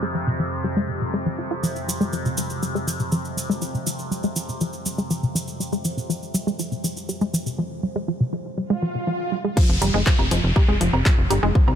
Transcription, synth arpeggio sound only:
0.03 0.06 G#3 loud
0.15 0.21 F3 medium
0.27 0.37 C3 medium
0.40 0.46 F3 medium
0.64 0.71 G3 medium
0.77 0.81 G#3 loud
0.89 0.95 C3 medium
1.02 1.11 C3 medium
1.14 1.20 G#3 medium
1.26 1.33 F3 medium
1.39 1.45 F4 medium
1.51 1.57 F4 loud
1.63 1.70 F3 medium
1.88 1.95 G3 medium
2.01 2.05 G#3 loud
2.13 2.19 F3 medium
2.26 2.35 C3 medium
2.38 2.44 F3 medium
2.63 2.69 G3 medium
2.75 2.79 G#3 loud
2.87 2.94 F3 medium
3.00 3.09 C3 medium
3.12 3.19 F3 medium
3.37 3.43 G3 medium
3.50 3.53 G#3 medium
3.62 3.68 F3 medium
3.74 3.84 C3 medium
3.87 3.93 F3 medium
4.11 4.18 G3 medium
4.24 4.28 G#3 loud
4.36 4.43 F3 medium
4.49 4.58 C3 medium
4.61 4.67 F3 medium
4.86 4.92 G3 medium
4.98 5.02 G#3 loud
5.11 5.17 F3 medium
5.23 5.32 C3 medium
5.35 5.42 F3 medium
5.60 5.67 G3 medium
5.73 5.76 G#3 loud
5.85 5.91 F3 medium
5.97 6.07 C3 medium
6.10 6.16 F3 medium
6.34 6.41 G3 medium
6.47 6.51 G#3 loud
6.59 6.66 F3 medium
6.72 6.81 C3 medium
6.84 6.90 F3 medium
7.09 7.15 G3 medium
7.21 7.25 G#3 loud
7.34 7.40 F3 medium
7.46 7.56 C3 medium
7.58 7.65 F3 medium
7.83 7.90 G3 medium
7.96 8.00 G#3 loud
8.08 8.14 F3 medium
8.21 8.30 C3 medium
8.33 8.39 F3 medium
8.58 8.64 G3 medium
8.70 8.74 G#3 loud
8.82 8.89 F3 medium
8.95 9.04 C3 medium
9.07 9.14 F3 medium
9.32 9.38 G3 medium
9.45 9.48 G#3 loud
9.57 9.63 F3 medium
9.57 9.63 F4 medium
9.82 9.88 G3 medium
9.82 9.88 G4 medium
9.94 9.98 G#3 loud
9.94 9.98 G#4 medium
10.06 10.13 F3 medium
10.06 10.13 F4 medium
10.19 10.28 C3 medium
10.19 10.28 C4 medium
10.31 10.38 F3 medium
10.31 10.38 F4 medium
10.56 10.62 G3 medium
10.56 10.62 G4 medium
10.69 10.72 G#3 loud
10.69 10.72 G#4 medium
10.81 10.87 F3 medium
10.81 10.87 F4 medium
10.93 11.03 C3 medium
10.93 11.03 C4 medium
11.06 11.12 F3 medium
11.06 11.12 F4 medium
11.30 11.37 G3 medium
11.30 11.37 G4 medium
11.43 11.47 G#3 loud
11.43 11.47 G#4 medium
11.55 11.62 F3 medium
11.55 11.62 F4 medium
11.68 11.75 C3 medium
11.68 11.75 C4 medium

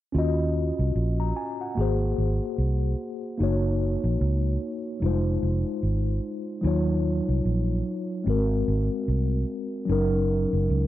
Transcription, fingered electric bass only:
0.15 0.70 D#2 medium
0.79 0.94 C2 medium
0.95 1.31 A#1 medium
1.77 2.12 G#1 medium
2.18 2.38 G#1 medium
2.58 2.94 C2 medium
3.40 3.96 F#1 medium
4.04 4.19 A#1 medium
4.21 4.56 C#2 medium
5.02 5.37 F1 loud
5.43 5.63 F1 medium
5.83 6.18 G#1 medium
6.64 7.20 D#2 loud
7.29 7.43 C2 medium
7.45 7.81 A#1 medium
8.27 8.62 G#1 medium
8.68 8.88 G#1 medium
9.08 9.43 C2 medium
9.89 10.45 F#1 loud
10.53 10.68 F#1 medium
10.70 10.87 C#2 medium

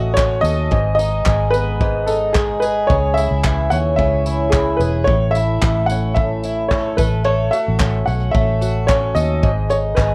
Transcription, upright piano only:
0.00 0.17 D#5 loud
0.14 0.44 C#5 loud
0.41 0.93 D#5 loud
0.95 1.48 D#5 loud
1.51 2.08 B4 loud
2.06 2.33 A4 medium
2.33 2.62 G#4 medium
2.60 2.89 B4 medium
2.87 3.17 C#5 loud
3.14 3.72 E5 loud
3.70 3.77 F#5 loud
3.96 4.48 E5 loud
4.50 4.77 G#4 medium
4.77 5.07 B4 medium
5.04 5.34 C#5 medium
5.31 5.84 E5 loud
5.86 6.13 F#5 medium
6.14 6.72 E5 loud
6.68 6.98 C#5 medium
6.97 7.26 B4 medium
7.25 7.50 C#5 loud
7.51 8.08 E5 loud
8.06 8.32 F#5 loud
8.31 8.89 E5 loud
8.87 9.13 C#5 medium
9.14 9.72 D#5 loud
9.70 9.76 C#5 medium
9.95 10.15 B4 medium

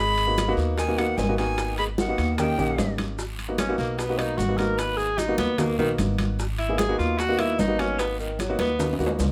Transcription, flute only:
0.00 0.54 B5 loud
0.78 0.99 G#5 medium
0.98 1.19 F#5 medium
1.17 1.37 G#5 medium
1.37 1.75 G#5 medium
1.78 1.84 B5 medium
1.99 2.36 F#5 medium
2.39 2.95 G5 medium

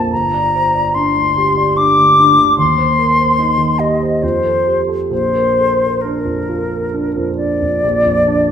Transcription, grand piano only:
0.00 0.14 F2 soft
0.00 0.14 A#3 soft
0.00 0.13 F4 soft
0.00 0.14 C5 soft
0.00 0.14 D5 soft
0.13 2.55 G1 soft
0.34 0.66 D5 soft
0.55 0.74 C5 soft
0.75 1.07 D5 soft
0.95 1.28 D4 soft
1.16 1.48 D2 soft
1.37 1.69 G4 soft
1.57 1.89 D5 soft
1.76 2.09 D4 soft
1.97 2.30 D2 soft
2.19 2.51 D4 soft
2.39 2.58 D2 soft
2.58 4.19 D#2 soft
2.78 3.10 C5 soft
2.99 3.18 A#4 soft
3.18 3.51 C5 soft
3.39 3.71 D#4 soft
3.58 3.92 D#3 soft
3.79 4.14 G4 soft
4.02 4.23 C5 soft
4.23 5.09 F2 soft
4.44 4.80 A4 soft
4.67 4.89 G4 soft
4.89 5.11 A4 soft
5.11 7.79 A#1 soft
5.35 5.71 A#4 soft
5.59 5.80 A4 soft
5.81 6.16 A#4 soft
6.05 6.39 D4 soft
6.25 6.61 F2 soft
6.48 6.84 F4 soft
6.71 7.06 A#4 soft
6.94 7.29 D4 soft
7.16 7.52 F2 soft
7.39 7.75 D4 soft
7.62 7.84 F2 soft
7.84 8.52 A#1 soft
8.05 8.40 F2 soft
8.27 8.52 D4 soft

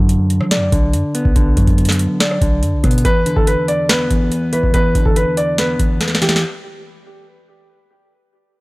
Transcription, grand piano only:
3.05 3.35 B4 loud
3.36 3.45 A4 medium
3.47 3.65 B4 medium
3.68 3.86 D5 medium
3.89 4.49 B4 medium
4.53 4.70 B4 medium
4.74 5.04 B4 loud
5.06 5.14 A4 medium
5.16 5.34 B4 medium
5.37 5.55 D5 medium
5.58 6.18 B4 medium
6.22 6.39 G4 medium

